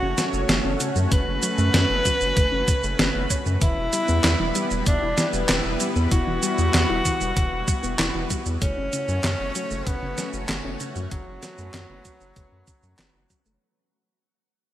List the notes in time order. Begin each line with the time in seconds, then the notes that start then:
Already playing: A3 C#4 F#4 C#5
0.02 F#1 C#3
0.18 F#3, snare, closed hi-hat, shaker
0.33 F#1, shaker
0.49 F#1 A3, snare, closed hi-hat, shaker
0.65 F#1 C#4
0.80 C#3, closed hi-hat, shaker
0.96 F#2 F#3, shaker
1.11 F#1 C#3 B4, kick, closed hi-hat, shaker
1.27 F#1
1.43 F#3, closed hi-hat, shaker
1.58 F#2 A3, shaker
1.74 F#2 C#4, snare, closed hi-hat, shaker
1.90 F#1 C#3
2.05 F#3, kick, closed hi-hat, shaker
2.21 F#1, shaker
2.37 F#1 A3, kick, closed hi-hat, shaker
2.52 F#1 C#4
2.68 C#3, kick, closed hi-hat, shaker
2.83 F#1 A3, shaker
2.99 F#1 C#4, snare, closed hi-hat, shaker
3.15 F#1 A3
3.30 C#5, kick, closed hi-hat, shaker
3.46 F#2 C#3, shaker
3.61 E1 E3 G3 B3 E4, kick, closed hi-hat, shaker
3.78 E1
3.93 G3, closed hi-hat, shaker
4.08 E2 B3, shaker
4.24 E2 E4, snare, clap, closed hi-hat, shaker
4.40 E1 E3
4.55 G3, closed hi-hat, shaker
4.71 E1, shaker
4.86 E1 B3 D4, kick, closed hi-hat, shaker
5.02 E1 E4
5.18 E3, snare, closed hi-hat, shaker
5.33 E1 G3, shaker
5.49 E1 E3, snare, clap, closed hi-hat, shaker
5.65 E1
5.80 G3, closed hi-hat, shaker
5.96 E2 B3, shaker
6.11 E1 E4 F#4, kick, closed hi-hat, shaker
6.27 E1 E3
6.43 G3, closed hi-hat, shaker
6.58 E2, shaker
6.74 E2 B3, snare, clap, closed hi-hat, shaker
6.90 E1 E4
7.05 E3, kick, closed hi-hat, shaker
7.21 E1 G3, shaker
7.36 E1 E3, kick, closed hi-hat, shaker
7.52 E1
7.68 G3, kick, closed hi-hat, shaker
7.83 E1 B3, shaker
7.99 E1 E4, snare, clap, closed hi-hat, shaker
8.15 E1 E3
8.30 G3, kick, closed hi-hat, shaker
8.46 E2, shaker
8.62 F#1 A3 C#4 F#4 C#5, kick, closed hi-hat, shaker
8.77 F#1 C#4
8.93 C#3, closed hi-hat, shaker
9.08 F#2 F#3, shaker
9.24 F#2 C#3, snare, clap, closed hi-hat, shaker
9.40 F#1
9.55 F#3, closed hi-hat, shaker
9.71 F#1 A3, shaker
9.87 F#1 B3 C#4, kick, closed hi-hat, shaker
10.02 F#1 C#3
10.18 F#3, snare, closed hi-hat, shaker
10.33 F#1, shaker
10.49 F#1 A3, snare, clap, closed hi-hat, shaker
10.65 F#1 C#4
10.80 C#3, closed hi-hat, shaker
10.96 F#2 F#3, shaker
11.11 F#1 C#3 F#3 B4, kick, closed hi-hat, shaker
11.27 F#1
11.43 F#3, snare, closed hi-hat, shaker
11.58 F#2 A3, shaker
11.74 F#2 C#4, snare, clap, closed hi-hat, shaker
11.90 F#1 C#3
12.05 F#3, kick, closed hi-hat, shaker
12.21 F#1, shaker
12.36 F#1 A3, kick, closed hi-hat, shaker
12.52 F#2 C#4
12.67 C#3, kick, closed hi-hat, shaker
12.83 F#2 F#3, shaker
12.99 F#1 C#3, snare, clap, closed hi-hat, shaker
13.14 F#1
13.30 F#3, kick, closed hi-hat, shaker
13.46 F#1 A3, shaker